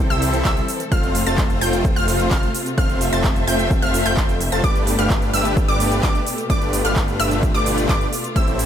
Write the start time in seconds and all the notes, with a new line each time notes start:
Already playing: E3 C4 A4
0.10 C2 G3 C4 E4 C5 E5 E6, closed hi-hat, shaker
0.22 open hi-hat, shaker
0.34 closed hi-hat, shaker
0.45 C2 G3 C4 E4 C5 E5 E6, kick, clap, closed hi-hat, shaker
0.57 closed hi-hat, shaker
0.68 open hi-hat, shaker
0.80 closed hi-hat, shaker
0.92 F1 C3 A3 C4 F4 C5 F5 F6, kick, closed hi-hat, shaker
1.03 closed hi-hat, shaker
1.15 open hi-hat, shaker
1.27 F1 A3 C4 F4 C5 A5 A6, closed hi-hat, shaker
1.38 kick, clap, closed hi-hat, shaker
1.50 closed hi-hat, shaker
1.61 F1 A3 C4 F4 C5 G5 G6, open hi-hat, shaker
1.73 closed hi-hat, shaker
1.85 kick, closed hi-hat, shaker
1.96 F1 A3 C4 F4 C5 F5 F6, closed hi-hat, shaker
2.08 open hi-hat, shaker
2.20 closed hi-hat, shaker
2.31 F1 A3 C4 F4 C5 F5 F6, kick, clap, closed hi-hat, shaker
2.43 closed hi-hat, shaker
2.55 open hi-hat, shaker
2.66 closed hi-hat, shaker
2.78 F1 A3 C4 F4 C5 E5 F5 F6, kick, closed hi-hat, shaker
2.89 closed hi-hat, shaker
3.01 open hi-hat, shaker
3.13 F1 A3 C4 F4 C5 A5 A6, closed hi-hat, shaker
3.24 kick, clap, closed hi-hat, shaker
3.36 closed hi-hat, shaker
3.47 F1 A3 C4 F4 C5 G5 G6, open hi-hat, shaker
3.59 closed hi-hat, shaker
3.71 kick, closed hi-hat, shaker
3.82 F1 A3 C4 F4 C5 F5 F6, closed hi-hat, shaker
3.94 open hi-hat, shaker
4.06 F1 A3 C4 F4 C5 G5 G6, closed hi-hat, shaker
4.17 kick, clap, closed hi-hat, shaker
4.29 closed hi-hat, shaker
4.41 open hi-hat, shaker
4.52 F1 A3 C4 F4 C5 A5 A6, closed hi-hat, shaker
4.64 B2 A3 D4 G4 B4 D5 D6, kick, closed hi-hat, shaker
4.75 closed hi-hat, shaker
4.87 open hi-hat, shaker
4.99 G1 A3 D4 G4 B4 F5 F6, closed hi-hat, shaker
5.10 kick, clap, closed hi-hat, shaker
5.22 closed hi-hat, shaker
5.33 G1 A3 D4 G4 B4 E5 E6, open hi-hat, shaker
5.45 closed hi-hat, shaker
5.57 kick, closed hi-hat, shaker
5.68 G1 A3 D4 G4 B4 D5 D6, closed hi-hat, shaker
5.80 open hi-hat, shaker
5.92 closed hi-hat, shaker
6.03 G1 A3 D4 G4 B4 D5 D6, kick, clap, closed hi-hat, shaker
6.15 closed hi-hat, shaker
6.27 open hi-hat, shaker
6.38 closed hi-hat, shaker
6.50 G1 A3 D4 F4 G4 B4 D5 D6, kick, closed hi-hat, shaker
6.62 closed hi-hat, shaker
6.73 open hi-hat, shaker
6.85 G1 A3 D4 G4 B4 F5 F6, closed hi-hat, shaker
6.96 kick, clap, closed hi-hat, shaker
7.08 closed hi-hat, shaker
7.20 G1 A3 D4 G4 B4 E5 E6, open hi-hat, shaker
7.31 closed hi-hat, shaker
7.43 kick, closed hi-hat, shaker
7.54 G1 A3 D4 G4 B4 D5 D6, closed hi-hat, shaker
7.66 open hi-hat, shaker
7.78 closed hi-hat, shaker
7.89 G1 A3 D4 G4 B4 D5 D6, kick, clap, closed hi-hat, shaker
8.01 closed hi-hat, shaker
8.13 open hi-hat, shaker
8.24 closed hi-hat, shaker
8.36 A1 C3 A3 C4 E4 C5 E5 E6, kick, closed hi-hat, shaker
8.48 closed hi-hat, shaker
8.59 open hi-hat, shaker